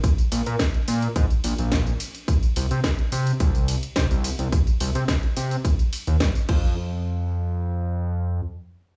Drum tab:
CC |----------------|----------------|--------------x-|----------------|
RD |x-x-x-x-x-x-x-x-|x-x-x-x-x-x-x-x-|x-x-x-x-x-x-x---|----------------|
HH |xxoxxxoxxxoxxxox|xxoxxxoxxxoxxxox|xxoxxxoxxxoxxx--|----------------|
TB |xxxxx-xxxxxxxxxx|xxxxx-xxxxxxxxxx|xxxxx-xxxxxxxx--|----------------|
SD |----o-------o---|----o-------o---|----o-------o---|----------------|
BD |o---o---o---o---|o---o---o---o---|o---o---o---o-o-|----------------|